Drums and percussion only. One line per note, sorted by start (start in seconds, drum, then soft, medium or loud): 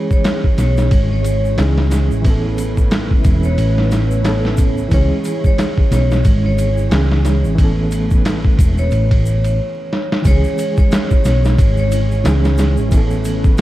0.11 kick medium
0.11 shaker soft
0.24 snare loud
0.24 ride medium
0.24 shaker soft
0.44 kick medium
0.58 snare soft
0.58 ride medium
0.58 shaker medium
0.77 snare soft
0.77 shaker soft
0.91 kick loud
0.91 ride medium
0.91 shaker soft
1.24 ride medium
1.24 shaker medium
1.45 shaker soft
1.58 snare loud
1.58 ride medium
1.58 shaker soft
1.78 snare medium
1.91 snare medium
1.91 ride medium
1.91 shaker medium
2.11 shaker soft
2.24 kick loud
2.24 ride medium
2.24 shaker soft
2.58 ride medium
2.58 shaker medium
2.77 kick medium
2.77 shaker soft
2.91 snare loud
2.91 ride medium
2.91 shaker soft
3.11 kick medium
3.24 kick loud
3.24 ride medium
3.24 shaker medium
3.43 shaker soft
3.58 ride medium
3.58 shaker soft
3.78 snare soft
3.91 snare medium
3.91 ride medium
3.91 shaker medium
4.11 shaker medium
4.24 snare loud
4.24 ride medium
4.24 shaker soft
4.45 snare soft
4.57 kick medium
4.57 ride medium
4.57 shaker medium
4.77 shaker soft
4.91 kick loud
4.91 ride medium
4.91 shaker soft
5.24 ride medium
5.24 shaker medium
5.44 kick medium
5.44 shaker soft
5.58 snare loud
5.58 ride medium
5.58 shaker soft
5.78 kick medium
5.92 snare soft
5.92 ride medium
5.92 shaker medium
6.11 snare medium
6.11 shaker soft
6.24 kick loud
6.24 ride medium
6.24 shaker soft
6.58 ride medium
6.58 shaker medium
6.77 shaker soft
6.91 snare loud
6.91 ride medium
6.91 shaker soft
7.11 snare medium
7.25 snare medium
7.25 ride medium
7.25 shaker medium
7.44 shaker soft
7.58 kick loud
7.58 ride medium
7.58 shaker soft
7.91 ride medium
7.91 shaker medium
8.11 kick medium
8.11 shaker soft
8.25 snare loud
8.25 ride medium
8.25 shaker soft
8.45 kick medium
8.59 kick loud
8.59 ride medium
8.59 shaker medium
8.78 shaker soft
8.91 ride medium
8.91 shaker soft
9.11 kick medium
9.11 ride medium
9.26 shaker medium
9.44 ride medium
9.44 shaker soft
9.93 snare medium
10.12 snare medium
10.25 kick loud
10.25 ride medium
10.25 shaker medium
10.44 shaker soft
10.58 ride medium
10.58 shaker medium
10.77 kick medium
10.77 shaker soft
10.92 snare loud
10.92 ride medium
10.92 shaker medium
11.11 kick medium
11.11 shaker soft
11.25 snare soft
11.25 ride medium
11.25 shaker medium
11.45 snare medium
11.45 shaker soft
11.58 kick loud
11.58 ride medium
11.58 shaker medium
11.77 shaker soft
11.92 ride medium
11.92 shaker medium
12.11 shaker soft
12.25 snare loud
12.25 ride medium
12.25 shaker medium
12.44 snare medium
12.44 shaker soft
12.58 snare medium
12.58 ride medium
12.58 shaker loud
12.77 shaker soft
12.91 kick loud
12.91 ride medium
12.91 shaker medium
13.10 shaker soft
13.25 ride medium
13.25 shaker loud
13.44 kick loud
13.44 shaker soft
13.58 shaker medium